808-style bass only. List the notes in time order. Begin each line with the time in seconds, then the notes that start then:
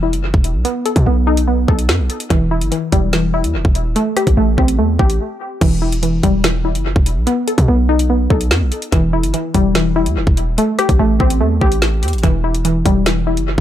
Already playing: E1
0.13 F#1
0.34 E1
0.55 B1
0.96 B2
1.06 B1
1.68 B1
1.89 F#2
1.99 B1
2.30 E1
2.61 G1
2.92 E1
3.44 E2
3.54 E1
3.65 E1
3.86 D#1
4.27 A1
4.37 A1
4.58 A1
4.79 E2
4.99 A1
5.61 E1
6.23 E1
6.75 F#1
6.96 E1
7.17 B1
7.58 B2
7.68 B1
8.30 B1
8.51 F#2
8.61 B1
8.92 E1
9.23 G1
9.54 E1
10.06 E2
10.17 E1
10.27 E1
10.48 D#1
10.89 A1
10.99 A1
11.20 A1
11.41 E2
11.61 A1
12.03 E2
12.13 A1
12.23 E1
12.86 E1
13.37 F#1